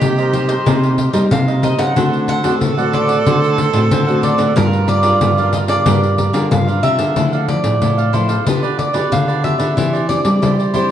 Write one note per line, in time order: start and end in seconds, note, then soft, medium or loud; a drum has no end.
0.00 0.57 C3 medium
0.00 0.63 G3 medium
0.00 0.28 A#3 medium
0.00 0.29 D#4 medium
0.00 0.29 G4 medium
0.00 1.70 G4 loud
0.00 0.33 D#5 medium
0.00 pandeiro medium
0.18 0.32 A#4 medium
0.18 0.33 C5 medium
0.18 0.33 D#5 medium
0.18 pandeiro soft
0.32 0.52 A#3 medium
0.32 0.48 D#4 soft
0.32 0.53 D#4 medium
0.32 0.53 G4 medium
0.32 0.49 A#4 medium
0.32 0.48 C5 medium
0.32 0.48 C5 soft
0.32 0.47 D#5 medium
0.32 pandeiro medium
0.48 0.65 A#4 soft
0.48 1.11 C5 medium
0.48 0.65 C5 soft
0.48 0.64 D#5 soft
0.48 pandeiro medium
0.66 1.28 C3 medium
0.66 1.08 C3 loud
0.66 0.97 A#3 medium
0.66 0.96 D#4 medium
0.66 0.97 D#4 medium
0.66 0.97 G4 medium
0.66 0.97 A#4 medium
0.66 0.98 C5 medium
0.66 0.98 D#5 medium
0.66 pandeiro medium
0.83 pandeiro soft
0.98 1.12 D#4 soft
0.98 1.13 A#4 soft
0.98 1.13 C5 medium
0.98 1.14 D#5 soft
0.98 pandeiro medium
1.13 1.28 G3 medium
1.13 1.58 A#3 medium
1.13 1.23 D#4 medium
1.13 1.58 D#4 medium
1.13 1.58 G4 medium
1.13 1.24 A#4 medium
1.13 1.24 C5 medium
1.13 1.24 D#5 medium
1.13 pandeiro medium
1.31 1.73 C3 loud
1.31 1.93 G3 medium
1.31 1.62 F5 medium
1.31 pandeiro medium
1.48 1.62 A#4 soft
1.48 1.62 C5 soft
1.48 1.63 D#5 medium
1.48 pandeiro soft
1.62 1.84 A#3 medium
1.62 1.78 D#4 medium
1.62 1.85 D#4 medium
1.62 1.85 G4 medium
1.62 1.78 A#4 medium
1.62 1.78 C5 medium
1.62 1.80 D#5 loud
1.62 1.77 D#5 medium
1.62 pandeiro medium
1.78 1.93 C#3 medium
1.78 1.95 A#4 soft
1.78 1.95 C5 soft
1.78 1.94 D#5 soft
1.78 2.28 F#5 loud
1.78 pandeiro medium
1.96 2.58 D3 medium
1.96 2.52 D3 medium
1.96 2.40 A3 medium
1.96 2.40 C4 medium
1.96 2.26 D4 medium
1.96 2.40 F#4 medium
1.96 4.53 A4 loud
1.96 2.27 C5 medium
1.96 2.28 D5 medium
1.96 2.28 F#5 medium
1.96 pandeiro medium
2.13 pandeiro soft
2.28 2.42 D4 soft
2.28 2.42 C5 medium
2.28 2.43 D5 soft
2.28 2.90 F#5 loud
2.28 2.43 F#5 medium
2.28 pandeiro medium
2.43 2.72 A3 medium
2.43 2.72 C4 medium
2.43 2.53 D4 medium
2.43 2.72 F#4 medium
2.43 2.53 C5 medium
2.43 2.54 D5 medium
2.43 2.54 F#5 medium
2.43 pandeiro medium
2.61 3.23 A2 medium
2.61 3.17 D3 medium
2.61 pandeiro medium
2.78 3.22 A3 medium
2.78 3.22 C4 medium
2.78 3.22 F#4 medium
2.78 2.92 C5 medium
2.78 2.93 D5 medium
2.78 2.93 F#5 medium
2.78 pandeiro soft
2.92 3.08 D4 medium
2.92 3.08 C5 soft
2.92 3.08 D5 medium
2.92 3.55 D5 medium
2.92 3.07 F#5 medium
2.92 pandeiro medium
3.08 3.25 C5 soft
3.08 3.25 D5 soft
3.08 3.24 F#5 medium
3.08 pandeiro medium
3.26 3.68 D3 loud
3.26 3.88 D3 medium
3.26 3.70 A3 medium
3.26 3.70 C4 medium
3.26 3.56 D4 medium
3.26 3.71 F#4 medium
3.26 3.57 C5 medium
3.26 3.58 D5 medium
3.26 3.58 F#5 medium
3.26 pandeiro medium
3.44 pandeiro soft
3.57 3.72 D4 medium
3.57 3.72 C5 medium
3.57 3.73 D5 medium
3.57 3.73 F#5 medium
3.57 pandeiro medium
3.73 3.88 A2 medium
3.73 4.02 A3 medium
3.73 4.02 C4 medium
3.73 3.83 D4 medium
3.73 4.02 F#4 medium
3.73 3.83 C5 medium
3.73 3.84 D5 medium
3.73 3.84 F#5 medium
3.73 pandeiro medium
3.91 4.53 A2 medium
3.91 4.33 D3 medium
3.91 4.23 C5 medium
3.91 pandeiro medium
4.07 4.52 A3 medium
4.07 4.52 C4 medium
4.07 4.52 F#4 medium
4.07 4.22 C5 soft
4.07 4.22 D5 soft
4.07 4.22 F#5 medium
4.07 pandeiro soft
4.22 4.38 D4 medium
4.22 4.38 C5 medium
4.22 4.54 D5 medium
4.22 4.38 D5 medium
4.22 4.37 F#5 medium
4.22 pandeiro medium
4.38 4.53 D3 medium
4.38 4.55 C5 soft
4.38 4.54 D5 soft
4.38 4.54 F#5 medium
4.38 pandeiro medium
4.55 5.11 G2 loud
4.55 5.18 G3 medium
4.55 4.87 D4 medium
4.55 6.20 F4 loud
4.55 4.87 F4 medium
4.55 4.86 G4 medium
4.55 4.87 A#4 medium
4.55 4.87 A#4 loud
4.55 4.88 A#4 medium
4.55 4.87 D5 medium
4.55 4.88 F5 medium
4.55 pandeiro medium
4.73 pandeiro soft
4.87 5.02 G4 medium
4.87 5.02 A#4 soft
4.87 5.03 D5 medium
4.87 5.50 D5 medium
4.87 5.03 F5 medium
4.87 pandeiro medium
5.03 5.32 D4 medium
5.03 5.32 F4 medium
5.03 5.13 G4 medium
5.03 5.13 A#4 medium
5.03 5.32 A#4 medium
5.03 5.13 D5 medium
5.03 5.14 F5 medium
5.03 pandeiro medium
5.21 5.76 G2 medium
5.21 5.84 D3 medium
5.21 pandeiro medium
5.37 5.82 D4 medium
5.37 5.82 F4 medium
5.37 5.52 A#4 medium
5.37 5.82 A#4 medium
5.37 5.52 D5 medium
5.37 5.52 F5 medium
5.37 pandeiro soft
5.52 5.68 G4 medium
5.52 5.68 A#4 medium
5.52 5.68 D5 medium
5.52 5.59 D#5 medium
5.52 5.67 F5 medium
5.52 pandeiro medium
5.68 5.85 A#4 soft
5.68 6.80 D5 medium
5.68 5.85 D5 soft
5.68 5.84 F5 medium
5.68 pandeiro medium
5.86 6.28 G2 loud
5.86 6.49 G3 medium
5.86 6.17 D4 medium
5.86 6.17 F4 medium
5.86 6.16 G4 medium
5.86 6.17 A#4 medium
5.86 6.18 A#4 medium
5.86 6.18 D5 medium
5.86 6.18 F5 medium
5.86 pandeiro loud
6.03 pandeiro soft
6.17 6.32 G4 medium
6.17 6.32 A#4 medium
6.17 6.33 D5 medium
6.17 6.33 F5 medium
6.17 pandeiro medium
6.33 6.48 D3 medium
6.33 6.62 D4 medium
6.33 6.62 F4 medium
6.33 6.43 G4 medium
6.33 6.43 A#4 medium
6.33 6.62 A#4 medium
6.33 6.44 D5 medium
6.33 6.44 F5 medium
6.33 pandeiro medium
6.51 6.79 G2 medium
6.51 7.14 D3 medium
6.51 7.12 F4 medium
6.51 6.85 F5 medium
6.51 pandeiro medium
6.68 7.12 D4 medium
6.68 7.12 F4 medium
6.68 7.12 A#4 medium
6.68 6.82 A#4 soft
6.68 6.83 D5 soft
6.68 6.83 F5 medium
6.68 pandeiro soft
6.83 6.98 C3 medium
6.83 6.98 G4 medium
6.83 6.99 A#4 medium
6.83 6.98 D5 medium
6.83 7.48 E5 medium
6.83 6.97 F5 medium
6.83 pandeiro medium
6.98 7.14 D3 medium
6.98 7.15 A#4 soft
6.98 7.15 D5 soft
6.98 7.14 F5 soft
6.98 pandeiro medium
7.16 7.58 D3 loud
7.16 7.78 D3 soft
7.16 7.44 F3 medium
7.16 7.44 A3 medium
7.16 7.31 E4 soft
7.16 7.44 E4 medium
7.16 7.32 A4 soft
7.16 7.32 D5 medium
7.16 7.31 F5 medium
7.16 pandeiro medium
7.33 7.47 A4 medium
7.33 7.48 D5 medium
7.33 7.48 F5 medium
7.33 pandeiro soft
7.48 8.09 F3 medium
7.48 8.09 A3 medium
7.48 8.09 E4 medium
7.48 8.10 D5 medium
7.48 muted cavaquinho stroke soft
7.48 pandeiro medium
7.64 7.78 A2 medium
7.64 pandeiro medium
7.81 8.37 A2 medium
7.81 8.44 A2 soft
7.81 7.96 E4 soft
7.81 7.97 A4 medium
7.81 7.97 D5 medium
7.81 7.97 F5 medium
7.81 pandeiro medium
7.98 8.12 A4 medium
7.98 8.13 D5 medium
7.98 8.13 F5 medium
7.98 pandeiro soft
8.13 8.33 F3 medium
8.13 8.34 A3 medium
8.13 8.28 E4 medium
8.13 8.34 E4 medium
8.13 8.29 A4 medium
8.13 8.44 C5 medium
8.13 8.28 D5 medium
8.13 8.27 F5 medium
8.13 pandeiro medium
8.28 8.45 A4 soft
8.28 8.45 D5 medium
8.28 8.44 F5 medium
8.28 pandeiro medium
8.46 8.88 D3 medium
8.46 9.09 D3 medium
8.46 8.78 B3 medium
8.46 8.61 F4 medium
8.46 8.78 F4 medium
8.46 8.62 G4 soft
8.46 8.78 G4 medium
8.46 8.79 B4 medium
8.46 8.62 B4 medium
8.46 8.61 D5 medium
8.46 pandeiro medium
8.63 8.77 G4 medium
8.63 8.78 B4 medium
8.63 8.78 D5 medium
8.63 pandeiro soft
8.78 9.13 D5 medium
8.78 muted cavaquinho stroke soft
8.78 pandeiro medium
8.93 9.08 D3 medium
8.93 9.39 B3 medium
8.93 9.39 F4 medium
8.93 9.27 G4 medium
8.93 9.39 G4 medium
8.93 9.26 B4 medium
8.93 9.26 D5 medium
8.93 pandeiro medium
9.12 9.53 D3 medium
9.12 9.74 D3 medium
9.12 9.42 F5 medium
9.12 pandeiro medium
9.28 9.42 G4 medium
9.28 9.43 B4 medium
9.28 9.43 D5 medium
9.28 pandeiro soft
9.43 9.74 B3 medium
9.43 9.58 F4 soft
9.43 9.75 F4 medium
9.43 9.59 G4 soft
9.43 9.75 G4 medium
9.43 9.58 B4 soft
9.43 9.57 D5 soft
9.43 10.05 E5 medium
9.43 pandeiro medium
9.58 9.74 D3 medium
9.58 9.75 G4 soft
9.58 9.75 B4 medium
9.58 9.74 D5 medium
9.58 pandeiro medium
9.76 10.18 E3 loud
9.76 10.39 E3 medium
9.76 10.05 C4 medium
9.76 10.05 D4 medium
9.76 9.91 E4 medium
9.76 9.92 G4 medium
9.76 10.05 G4 medium
9.76 9.92 C5 soft
9.76 9.92 D5 medium
9.76 pandeiro medium
9.93 10.08 G4 medium
9.93 10.08 C5 medium
9.93 10.08 D5 medium
9.93 pandeiro soft
10.08 10.51 C4 medium
10.08 10.52 D4 medium
10.08 10.52 G4 medium
10.08 10.73 D5 medium
10.08 muted cavaquinho stroke soft
10.08 pandeiro medium
10.25 10.39 G3 medium
10.25 pandeiro medium
10.42 10.91 E3 medium
10.42 10.91 G3 medium
10.42 10.57 E4 medium
10.42 10.57 G4 soft
10.42 10.58 C5 soft
10.42 10.57 D5 medium
10.42 pandeiro medium
10.59 10.73 G4 medium
10.59 10.74 C5 medium
10.59 10.73 D5 medium
10.59 pandeiro soft
10.74 10.91 C4 medium
10.74 10.91 D4 medium
10.74 10.89 E4 medium
10.74 10.90 G4 medium
10.74 10.91 G4 medium
10.74 10.91 C5 medium
10.74 10.89 C5 medium
10.74 10.88 D5 medium
10.74 pandeiro medium